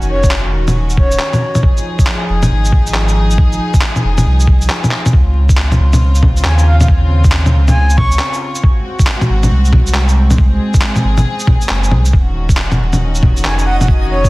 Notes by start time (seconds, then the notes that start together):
Already playing: F1 D#3 C#4 F#4
0.02 shaker
0.10 C#5
0.24 kick, shaker
0.31 clap
0.53 D#1
0.68 low bongo, shaker
0.90 shaker
0.97 C#5, kick
1.11 shaker
1.19 clap
1.33 low bongo, shaker
1.55 low bongo, shaker
1.63 F3 D#4 G#4, kick
1.77 shaker
1.99 kick, shaker
2.07 clap
2.29 F1
2.43 low bongo, shaker
2.51 G#1
2.65 shaker
2.72 kick
2.87 shaker
2.94 clap
3.08 shaker
3.31 shaker
3.38 kick
3.52 shaker
3.74 kick, shaker
3.82 clap
3.96 low bongo, shaker
4.04 F1
4.18 low bongo, shaker
4.26 C2
4.40 shaker
4.47 kick
4.62 shaker
4.70 clap
4.84 low bongo, shaker
4.91 clap
5.06 low bongo, shaker
5.13 C#2 C#3 C4 F4, kick
5.49 kick, shaker
5.57 clap
5.72 low bongo, shaker
5.79 C#2
5.93 low bongo, shaker
6.15 shaker
6.23 kick, low bongo
6.37 shaker
6.44 D#2 G#5, clap
6.58 G#5, shaker
6.67 F5
6.81 F5, low bongo, shaker
6.88 kick
7.24 kick, shaker
7.32 clap
7.46 low bongo, shaker
7.54 C#2
7.68 G#5, low bongo, shaker
7.90 shaker
7.97 C#6, kick, low bongo
8.12 shaker
8.19 clap
8.33 shaker
8.55 shaker
8.63 G#3 C4 F#4, kick
8.99 kick, shaker
9.07 clap
9.21 low bongo, shaker
9.29 G#1
9.43 low bongo, shaker
9.51 C2
9.65 shaker
9.73 kick, low bongo
9.87 shaker
9.94 clap
10.09 shaker
10.30 low bongo, shaker
10.38 G#4, kick
10.74 kick, shaker
10.82 clap
10.96 low bongo, shaker
11.04 G#1
11.18 low bongo, shaker
11.40 shaker
11.47 kick, low bongo
11.61 shaker
11.69 F#1, clap
11.84 shaker
11.91 C2, low bongo
12.05 shaker
12.13 D#1 D#3 C#4 F#4 D#5, kick
12.49 kick, shaker
12.57 clap
12.72 low bongo, shaker
12.79 D#1
12.93 low bongo, shaker
13.15 shaker
13.23 kick, low bongo
13.37 shaker
13.44 F1 G#5, clap
13.59 G#5, shaker
13.66 F#5
13.80 F#5, low bongo, shaker
13.88 kick
14.10 C#5
14.24 kick, shaker